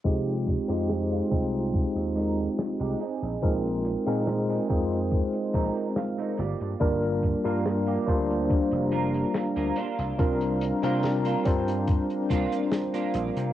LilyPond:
<<
  \new Staff \with { instrumentName = "Ambient pad" } { \time 4/4 \key f \dorian \tempo 4 = 71 << { r1 | r1 | <f'' bes''>1~ | <f'' bes''>1 | } \\ { r1 | r1 | <d' g'>2.~ <d' g'>8 <d' c''>8~ | <d' c''>1 | } >> }
  \new Staff \with { instrumentName = "Clean electric guitar" } { \time 4/4 \key f \dorian << { r1 | r2. f''8 d''8 | r1 | r1 | } \\ { r8. <aes ees' g'>16 r16 <aes ees' f'>16 r4 <aes ees' bes'>8 r16 <aes ees' g'>16 <c' ees' aes'>8~ | <c' ees' aes'>8 r16 <c' ees' aes'>16 r16 <c' ees' aes'>16 r4 <c' ees' bes'>8 r16 <c' ees' bes'>16 <bes f' g'>8~ | <bes f' g'>8 r16 <bes f' bes'>16 r16 <bes f' g'>16 r4 <bes f' bes'>8 r16 <bes f' bes'>16 <bes d' f'>8~ | <bes d' f'>8 r16 <bes d' f'>16 r16 <bes d' f'>16 r4 <bes d' f'>8 r16 <bes d' f'>8. | } >> }
  \new Staff \with { instrumentName = "Tine electric piano" } { \time 4/4 \key f \dorian <aes c' ees' f' g'>8. <aes c' ees' f' g'>16 r8 <aes c' ees' f'>2 r8 | <aes c' ees' f' bes'>8. <aes c' ees' f' bes'>8. <aes c' ees' f' c''>2 r8 | <g bes d' f' bes'>8. <g bes d' f' bes'>16 r8 <g bes d' f' c''>2 r8 | <g c' d' f' bes'>8. <g c' d' f' bes'>8. <g c' d' f' c''>2~ <g c' d' f' c''>8 | }
  \new Staff \with { instrumentName = "Slap bass" } { \clef bass \time 4/4 \key f \dorian f,,8 r16 f,8 r16 c,8 r16 ees,8 r8 c,16 r16 bes,,16 | bes,,8 r16 bes,8 r16 f,8 r8 bes,,16 r8. g,,16 g,16 | g,,8 r16 g,8 r16 d,8 r16 f,,8 r8 d,16 r16 c,16 | c,8 r16 c8 r16 g,8 r8 c,16 r8. bes,,16 c16 | }
  \new DrumStaff \with { instrumentName = "Drums" } \drummode { \time 4/4 <hh bd>16 hh16 <hh bd>16 hh16 <hh sn>16 hh16 <hh bd>16 hh16 <hh bd>16 hh16 hh16 hh16 <hh sn>16 hh16 hh16 hh16 | <hh bd>16 hh16 hh16 hh16 <hh sn>16 hh16 <hh bd>16 hh16 <hh bd>16 hh16 <hh bd>16 hh16 <hh sn>16 hh16 hh16 hh16 | <hh bd>16 hh16 <hh bd>16 hh16 <hh sn>16 hh16 <hh bd>16 hh16 <hh bd>16 hh16 hh16 hh16 <hh sn>16 hh16 hh16 hh16 | <hh bd>16 hh16 hh16 hh16 <hh sn>16 hh16 <hh bd>16 hh16 <hh bd>16 hh16 <hh bd>16 hh16 <hh sn>16 hh16 hh16 hh16 | }
>>